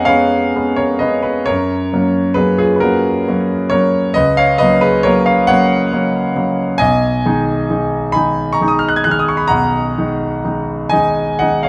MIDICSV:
0, 0, Header, 1, 2, 480
1, 0, Start_track
1, 0, Key_signature, 6, "major"
1, 0, Tempo, 918836
1, 772, Time_signature, 12, 3, 24, 8
1, 1244, Tempo, 884956
1, 3644, Tempo, 900901
1, 5084, Tempo, 952381
1, 6182, End_track
2, 0, Start_track
2, 0, Title_t, "Grand piano"
2, 0, Program_c, 0, 0
2, 0, Control_c, 0, 64, 127
2, 0, Note_on_c, 0, 41, 69
2, 0, Note_on_c, 0, 56, 52
2, 0, Note_on_c, 0, 59, 52
2, 0, Note_on_c, 0, 61, 60
2, 0, Note_on_c, 0, 75, 67
2, 0, Note_on_c, 0, 77, 73
2, 0, Note_on_c, 0, 78, 88
2, 0, Note_on_c, 0, 80, 93
2, 0, Note_on_c, 0, 82, 88
2, 27, Note_off_c, 0, 77, 0
2, 27, Note_on_c, 0, 77, 99
2, 34, Note_on_c, 0, 73, 74
2, 43, Note_off_c, 0, 59, 0
2, 43, Note_on_c, 0, 59, 56
2, 45, Note_off_c, 0, 56, 0
2, 45, Note_on_c, 0, 56, 59
2, 47, Note_off_c, 0, 61, 0
2, 47, Note_on_c, 0, 61, 63
2, 268, Note_off_c, 0, 59, 0
2, 269, Note_off_c, 0, 56, 0
2, 270, Note_off_c, 0, 61, 0
2, 291, Note_on_c, 0, 56, 55
2, 292, Note_on_c, 0, 59, 51
2, 293, Note_on_c, 0, 61, 57
2, 385, Note_off_c, 0, 73, 0
2, 399, Note_on_c, 0, 73, 86
2, 402, Note_off_c, 0, 77, 0
2, 404, Note_on_c, 0, 70, 60
2, 512, Note_off_c, 0, 56, 0
2, 512, Note_off_c, 0, 59, 0
2, 513, Note_off_c, 0, 61, 0
2, 517, Note_off_c, 0, 75, 0
2, 517, Note_on_c, 0, 75, 79
2, 520, Note_off_c, 0, 70, 0
2, 522, Note_on_c, 0, 71, 65
2, 526, Note_off_c, 0, 73, 0
2, 531, Note_on_c, 0, 56, 45
2, 533, Note_on_c, 0, 59, 51
2, 533, Note_on_c, 0, 61, 55
2, 633, Note_off_c, 0, 71, 0
2, 640, Note_on_c, 0, 71, 86
2, 644, Note_off_c, 0, 75, 0
2, 649, Note_on_c, 0, 68, 62
2, 750, Note_off_c, 0, 56, 0
2, 751, Note_off_c, 0, 59, 0
2, 751, Note_off_c, 0, 61, 0
2, 761, Note_off_c, 0, 68, 0
2, 761, Note_on_c, 0, 73, 99
2, 766, Note_off_c, 0, 71, 0
2, 767, Note_on_c, 0, 70, 77
2, 779, Note_on_c, 0, 42, 73
2, 781, Control_c, 0, 64, 0
2, 782, Note_off_c, 0, 41, 0
2, 783, Note_off_c, 0, 80, 0
2, 785, Note_off_c, 0, 82, 0
2, 786, Note_off_c, 0, 78, 0
2, 867, Control_c, 0, 64, 127
2, 1005, Note_off_c, 0, 42, 0
2, 1009, Note_on_c, 0, 54, 53
2, 1012, Note_on_c, 0, 58, 56
2, 1014, Note_on_c, 0, 61, 59
2, 1220, Note_off_c, 0, 70, 0
2, 1222, Note_off_c, 0, 54, 0
2, 1224, Note_off_c, 0, 58, 0
2, 1224, Note_on_c, 0, 71, 94
2, 1225, Note_off_c, 0, 61, 0
2, 1230, Note_on_c, 0, 68, 75
2, 1237, Note_on_c, 0, 54, 55
2, 1238, Note_off_c, 0, 73, 0
2, 1242, Note_on_c, 0, 61, 56
2, 1243, Note_on_c, 0, 58, 53
2, 1346, Note_off_c, 0, 68, 0
2, 1354, Note_off_c, 0, 71, 0
2, 1354, Note_on_c, 0, 68, 86
2, 1360, Note_on_c, 0, 65, 61
2, 1440, Note_off_c, 0, 65, 0
2, 1443, Note_off_c, 0, 68, 0
2, 1449, Note_on_c, 0, 71, 71
2, 1459, Note_off_c, 0, 54, 0
2, 1462, Note_off_c, 0, 58, 0
2, 1462, Note_off_c, 0, 61, 0
2, 1473, Note_on_c, 0, 70, 92
2, 1479, Note_on_c, 0, 66, 62
2, 1485, Note_off_c, 0, 71, 0
2, 1487, Note_on_c, 0, 54, 49
2, 1492, Note_on_c, 0, 58, 52
2, 1494, Note_on_c, 0, 61, 55
2, 1705, Note_off_c, 0, 54, 0
2, 1707, Note_off_c, 0, 58, 0
2, 1708, Note_off_c, 0, 61, 0
2, 1733, Note_on_c, 0, 54, 58
2, 1735, Note_on_c, 0, 58, 56
2, 1738, Note_on_c, 0, 61, 65
2, 1944, Note_off_c, 0, 66, 0
2, 1951, Note_off_c, 0, 54, 0
2, 1952, Note_off_c, 0, 58, 0
2, 1953, Note_off_c, 0, 61, 0
2, 1957, Note_off_c, 0, 70, 0
2, 1957, Note_on_c, 0, 73, 101
2, 1965, Note_on_c, 0, 70, 73
2, 1975, Note_on_c, 0, 54, 53
2, 1976, Note_on_c, 0, 58, 54
2, 1980, Note_on_c, 0, 61, 54
2, 2194, Note_off_c, 0, 54, 0
2, 2194, Note_off_c, 0, 70, 0
2, 2195, Note_off_c, 0, 58, 0
2, 2197, Note_off_c, 0, 61, 0
2, 2198, Note_on_c, 0, 75, 107
2, 2206, Note_on_c, 0, 71, 82
2, 2207, Note_off_c, 0, 73, 0
2, 2213, Note_on_c, 0, 37, 69
2, 2221, Control_c, 0, 64, 0
2, 2310, Control_c, 0, 64, 127
2, 2322, Note_off_c, 0, 71, 0
2, 2324, Note_on_c, 0, 77, 108
2, 2326, Note_off_c, 0, 75, 0
2, 2331, Note_on_c, 0, 73, 80
2, 2438, Note_on_c, 0, 75, 105
2, 2442, Note_on_c, 0, 71, 84
2, 2444, Note_off_c, 0, 73, 0
2, 2447, Note_off_c, 0, 37, 0
2, 2449, Note_off_c, 0, 77, 0
2, 2453, Note_on_c, 0, 54, 61
2, 2457, Note_on_c, 0, 58, 54
2, 2459, Note_on_c, 0, 61, 63
2, 2554, Note_off_c, 0, 71, 0
2, 2562, Note_on_c, 0, 71, 97
2, 2566, Note_off_c, 0, 75, 0
2, 2566, Note_on_c, 0, 68, 75
2, 2671, Note_off_c, 0, 54, 0
2, 2673, Note_off_c, 0, 58, 0
2, 2674, Note_off_c, 0, 61, 0
2, 2681, Note_off_c, 0, 68, 0
2, 2682, Note_on_c, 0, 73, 105
2, 2687, Note_off_c, 0, 71, 0
2, 2689, Note_on_c, 0, 70, 76
2, 2699, Note_on_c, 0, 54, 60
2, 2701, Note_on_c, 0, 58, 59
2, 2704, Note_on_c, 0, 61, 64
2, 2801, Note_off_c, 0, 70, 0
2, 2803, Note_off_c, 0, 73, 0
2, 2804, Note_on_c, 0, 77, 85
2, 2811, Note_on_c, 0, 73, 62
2, 2910, Note_off_c, 0, 54, 0
2, 2912, Note_off_c, 0, 58, 0
2, 2913, Note_off_c, 0, 61, 0
2, 2919, Note_off_c, 0, 73, 0
2, 2921, Note_on_c, 0, 78, 115
2, 2926, Note_off_c, 0, 77, 0
2, 2927, Note_on_c, 0, 73, 87
2, 2936, Note_on_c, 0, 54, 62
2, 2939, Note_on_c, 0, 58, 61
2, 2943, Note_on_c, 0, 61, 68
2, 3145, Note_off_c, 0, 54, 0
2, 3146, Note_off_c, 0, 58, 0
2, 3148, Note_off_c, 0, 61, 0
2, 3168, Note_on_c, 0, 54, 58
2, 3170, Note_on_c, 0, 61, 69
2, 3171, Note_on_c, 0, 58, 56
2, 3381, Note_off_c, 0, 54, 0
2, 3382, Note_off_c, 0, 58, 0
2, 3382, Note_off_c, 0, 61, 0
2, 3401, Note_on_c, 0, 54, 51
2, 3404, Note_on_c, 0, 58, 53
2, 3405, Note_on_c, 0, 61, 60
2, 3620, Note_off_c, 0, 73, 0
2, 3621, Note_off_c, 0, 54, 0
2, 3623, Note_off_c, 0, 58, 0
2, 3623, Note_off_c, 0, 61, 0
2, 3630, Note_on_c, 0, 80, 118
2, 3637, Note_on_c, 0, 75, 93
2, 3638, Note_off_c, 0, 78, 0
2, 3646, Note_on_c, 0, 35, 77
2, 3652, Control_c, 0, 64, 0
2, 3743, Control_c, 0, 64, 127
2, 3876, Note_off_c, 0, 35, 0
2, 3883, Note_on_c, 0, 51, 64
2, 3885, Note_on_c, 0, 56, 64
2, 3888, Note_on_c, 0, 63, 68
2, 4099, Note_off_c, 0, 51, 0
2, 4100, Note_off_c, 0, 56, 0
2, 4101, Note_off_c, 0, 63, 0
2, 4120, Note_on_c, 0, 51, 54
2, 4123, Note_on_c, 0, 63, 60
2, 4124, Note_on_c, 0, 56, 55
2, 4335, Note_off_c, 0, 75, 0
2, 4339, Note_off_c, 0, 51, 0
2, 4340, Note_off_c, 0, 63, 0
2, 4341, Note_off_c, 0, 56, 0
2, 4346, Note_off_c, 0, 80, 0
2, 4346, Note_on_c, 0, 83, 100
2, 4354, Note_on_c, 0, 80, 66
2, 4363, Note_on_c, 0, 51, 54
2, 4364, Note_on_c, 0, 56, 48
2, 4369, Note_on_c, 0, 63, 54
2, 4558, Note_off_c, 0, 80, 0
2, 4560, Note_on_c, 0, 85, 95
2, 4567, Note_on_c, 0, 82, 76
2, 4570, Note_off_c, 0, 83, 0
2, 4581, Note_off_c, 0, 51, 0
2, 4582, Note_off_c, 0, 56, 0
2, 4584, Note_off_c, 0, 63, 0
2, 4603, Note_on_c, 0, 51, 55
2, 4607, Note_on_c, 0, 56, 59
2, 4610, Note_on_c, 0, 63, 64
2, 4642, Note_off_c, 0, 82, 0
2, 4642, Note_on_c, 0, 87, 92
2, 4644, Note_off_c, 0, 85, 0
2, 4701, Note_on_c, 0, 89, 77
2, 4707, Note_off_c, 0, 87, 0
2, 4752, Note_on_c, 0, 90, 82
2, 4756, Note_off_c, 0, 89, 0
2, 4793, Note_on_c, 0, 92, 82
2, 4799, Note_off_c, 0, 90, 0
2, 4821, Note_off_c, 0, 51, 0
2, 4823, Note_off_c, 0, 56, 0
2, 4824, Note_off_c, 0, 63, 0
2, 4835, Note_on_c, 0, 90, 83
2, 4837, Note_off_c, 0, 92, 0
2, 4849, Note_on_c, 0, 51, 56
2, 4849, Note_on_c, 0, 56, 57
2, 4853, Note_on_c, 0, 63, 62
2, 4873, Note_on_c, 0, 89, 78
2, 4878, Note_off_c, 0, 90, 0
2, 4916, Note_on_c, 0, 87, 84
2, 4920, Note_off_c, 0, 89, 0
2, 4965, Note_on_c, 0, 85, 79
2, 4969, Note_off_c, 0, 87, 0
2, 5011, Note_on_c, 0, 83, 82
2, 5022, Note_off_c, 0, 85, 0
2, 5065, Note_off_c, 0, 51, 0
2, 5066, Note_off_c, 0, 56, 0
2, 5066, Note_on_c, 0, 82, 100
2, 5067, Note_off_c, 0, 63, 0
2, 5074, Note_on_c, 0, 78, 73
2, 5075, Note_off_c, 0, 83, 0
2, 5082, Note_on_c, 0, 35, 66
2, 5309, Note_off_c, 0, 35, 0
2, 5322, Note_on_c, 0, 51, 53
2, 5324, Note_on_c, 0, 63, 57
2, 5325, Note_on_c, 0, 56, 50
2, 5538, Note_off_c, 0, 51, 0
2, 5538, Note_off_c, 0, 63, 0
2, 5539, Note_off_c, 0, 56, 0
2, 5556, Note_on_c, 0, 51, 50
2, 5559, Note_on_c, 0, 56, 55
2, 5559, Note_on_c, 0, 63, 55
2, 5773, Note_off_c, 0, 78, 0
2, 5778, Note_off_c, 0, 51, 0
2, 5780, Note_off_c, 0, 56, 0
2, 5780, Note_off_c, 0, 63, 0
2, 5783, Note_on_c, 0, 80, 102
2, 5788, Note_on_c, 0, 75, 78
2, 5790, Note_off_c, 0, 82, 0
2, 5796, Note_on_c, 0, 51, 55
2, 5800, Note_on_c, 0, 56, 60
2, 5801, Note_on_c, 0, 63, 61
2, 6019, Note_off_c, 0, 75, 0
2, 6020, Note_off_c, 0, 51, 0
2, 6022, Note_off_c, 0, 56, 0
2, 6023, Note_off_c, 0, 63, 0
2, 6031, Note_on_c, 0, 78, 91
2, 6034, Note_off_c, 0, 80, 0
2, 6035, Note_on_c, 0, 75, 69
2, 6044, Note_on_c, 0, 51, 49
2, 6044, Note_on_c, 0, 56, 50
2, 6048, Note_on_c, 0, 63, 57
2, 6150, Note_off_c, 0, 75, 0
2, 6153, Note_on_c, 0, 77, 79
2, 6157, Note_off_c, 0, 78, 0
2, 6160, Note_on_c, 0, 73, 62
2, 6182, Note_off_c, 0, 51, 0
2, 6182, Note_off_c, 0, 56, 0
2, 6182, Note_off_c, 0, 63, 0
2, 6182, Note_off_c, 0, 73, 0
2, 6182, Note_off_c, 0, 77, 0
2, 6182, End_track
0, 0, End_of_file